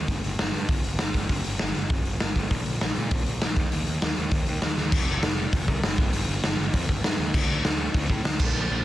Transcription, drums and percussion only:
0.08 kick, open hi-hat
0.24 open hi-hat
0.39 snare, open hi-hat
0.54 open hi-hat
0.69 kick, open hi-hat
0.84 open hi-hat
0.99 snare, open hi-hat
1.14 kick, open hi-hat
1.29 kick, open hi-hat
1.44 open hi-hat
1.59 snare, open hi-hat
1.74 open hi-hat
1.90 kick, open hi-hat
2.05 open hi-hat
2.20 snare, open hi-hat
2.35 kick, open hi-hat
2.51 kick, open hi-hat
2.66 open hi-hat
2.81 snare, open hi-hat
2.96 open hi-hat
3.11 kick, open hi-hat
3.26 open hi-hat
3.41 snare, open hi-hat
3.57 kick, open hi-hat
3.72 open hi-hat
3.86 open hi-hat
4.02 snare, open hi-hat
4.17 open hi-hat
4.31 kick, open hi-hat
4.46 open hi-hat
4.62 snare, open hi-hat
4.77 snare
4.92 kick, crash
5.23 snare, open hi-hat
5.53 kick, open hi-hat
5.68 kick
5.83 snare, open hi-hat
5.98 kick
6.13 open hi-hat
6.43 snare, open hi-hat
6.73 kick, open hi-hat
6.89 kick
7.04 snare, open hi-hat
7.34 kick, crash
7.65 snare, open hi-hat
7.94 kick, open hi-hat
8.10 kick
8.25 snare, open hi-hat
8.40 kick, crash

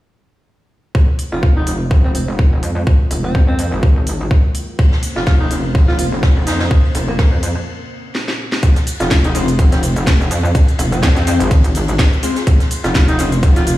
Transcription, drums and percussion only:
0.95 kick
1.19 open hi-hat
1.43 kick
1.67 open hi-hat
1.91 kick
2.15 open hi-hat
2.39 kick
2.63 open hi-hat
2.87 kick
3.11 open hi-hat
3.35 kick
3.59 open hi-hat
3.83 kick
4.07 open hi-hat
4.31 kick
4.55 open hi-hat
4.79 kick, ride
4.92 snare
5.03 open hi-hat, ride
5.16 snare
5.26 kick, snare, ride
5.41 ride
5.51 open hi-hat, ride
5.75 kick, ride
5.88 snare
5.99 open hi-hat, ride
6.23 kick, snare, ride
6.36 ride
6.47 snare, open hi-hat, ride
6.60 snare, ride
6.71 kick, ride
6.85 ride
6.95 snare, open hi-hat, ride
7.19 kick, snare, ride
7.43 open hi-hat, ride
8.15 snare
8.28 snare
8.52 snare
8.63 kick, closed hi-hat, ride, shaker
8.76 snare, closed hi-hat, shaker
8.87 open hi-hat, ride, shaker
9.00 snare, closed hi-hat, shaker
9.10 kick, snare, closed hi-hat, ride, shaker
9.24 closed hi-hat, ride, shaker
9.35 open hi-hat, ride, shaker
9.48 closed hi-hat, shaker
9.59 kick, closed hi-hat, ride, shaker
9.72 snare, closed hi-hat, shaker
9.83 open hi-hat, ride, shaker
9.96 closed hi-hat, shaker
10.07 kick, snare, closed hi-hat, ride, shaker
10.20 ride, shaker
10.31 open hi-hat, ride, shaker
10.45 shaker
10.54 kick, closed hi-hat, ride, shaker
10.68 closed hi-hat, ride, shaker
10.78 snare, open hi-hat, ride, shaker
10.92 closed hi-hat, shaker
11.02 kick, snare, closed hi-hat, ride, shaker
11.16 snare, closed hi-hat, shaker
11.26 open hi-hat, ride, shaker
11.40 closed hi-hat, shaker
11.51 kick, closed hi-hat, ride, shaker
11.64 closed hi-hat, ride, shaker
11.75 open hi-hat, ride, shaker
11.88 closed hi-hat, shaker
11.99 kick, snare, closed hi-hat, shaker
12.13 shaker
12.23 open hi-hat, ride, shaker
12.36 snare, closed hi-hat, shaker
12.47 kick, closed hi-hat, ride, shaker
12.60 snare, closed hi-hat, shaker
12.71 open hi-hat, ride, shaker
12.84 snare, closed hi-hat, shaker
12.94 kick, snare, closed hi-hat, ride, shaker
13.08 closed hi-hat, ride, shaker
13.19 open hi-hat, ride, shaker
13.32 closed hi-hat, shaker
13.43 kick, closed hi-hat, ride, shaker
13.56 snare, closed hi-hat, shaker
13.67 open hi-hat, ride, shaker

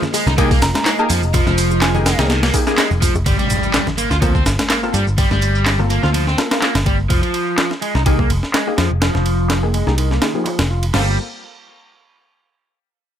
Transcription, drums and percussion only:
0.02 snare, low conga, shaker
0.14 open hi-hat, ride, high bongo, shaker
0.27 snare, high conga, low conga, shaker
0.38 kick, ride, shaker
0.51 kick, open hi-hat, high bongo, shaker
0.62 snare, open hi-hat, ride, shaker
0.74 snare, ride, high bongo, high conga, shaker
0.86 snare, clap, ride, shaker
0.99 shaker
1.10 open hi-hat, ride, high bongo, shaker
1.23 shaker
1.34 kick, ride, high bongo, shaker
1.47 snare, high conga, shaker
1.58 open hi-hat, ride, shaker
1.71 high bongo, shaker
1.82 snare, clap, ride, shaker
1.95 high bongo, low conga, shaker
2.06 snare, open hi-hat, ride, shaker
2.19 snare, ride, high conga, low conga, shaker
2.30 snare, ride, high bongo, shaker
2.43 snare, open hi-hat, ride, shaker
2.54 kick, open hi-hat, ride, high bongo, shaker
2.67 snare, shaker
2.78 snare, clap, ride, shaker
2.91 high bongo, shaker
3.01 kick, open hi-hat, ride, high conga, shaker
3.15 high bongo, shaker
3.26 kick, ride, shaker
3.39 ride, high conga, shaker
3.50 ride, shaker
3.63 shaker
3.74 snare, clap, ride, shaker
3.87 snare, low conga, shaker
3.98 ride, shaker
4.11 snare, low conga, shaker
4.22 kick, ride, shaker
4.35 kick, shaker
4.46 snare, ride, shaker
4.59 snare, ride, high conga, shaker
4.70 snare, clap, ride, shaker
4.83 shaker
4.94 ride, shaker
5.07 shaker
5.18 kick, ride, shaker
5.31 snare, high conga, shaker
5.42 ride, shaker
5.55 shaker
5.66 snare, clap, ride, shaker
5.79 low conga, shaker
5.90 ride, shaker
6.03 snare, low conga, shaker
6.14 ride, shaker
6.27 snare, shaker
6.38 snare, ride, shaker
6.51 snare, ride, shaker
6.62 snare, clap, ride, shaker
6.75 snare, ride
6.86 kick, ride, high conga, shaker
6.99 shaker
7.10 kick, ride, shaker
7.23 ride, shaker
7.34 ride, shaker
7.47 shaker
7.58 snare, clap, ride
7.71 snare
7.82 ride, shaker
7.95 snare
8.06 kick, ride
8.19 kick
8.30 ride, shaker
8.43 snare
8.54 snare, clap, ride
8.78 snare, ride
9.02 snare, ride
9.15 snare
9.26 ride
9.50 snare, clap, ride
9.74 ride
9.87 snare
9.98 ride
10.11 snare
10.22 snare, ride
10.46 clap, ride
10.59 snare, ride
10.83 ride
10.94 snare, floor tom, crash

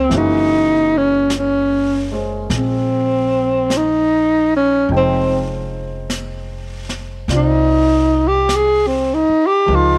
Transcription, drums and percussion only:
0.11 brush sweep, snare
1.30 brush sweep, snare, hi-hat pedal
2.50 brush sweep, snare
3.70 brush sweep, snare, hi-hat pedal
4.90 brush sweep
6.10 brush sweep, snare, hi-hat pedal
6.89 snare
7.29 brush sweep, snare
8.49 brush sweep, snare, hi-hat pedal
9.69 brush sweep

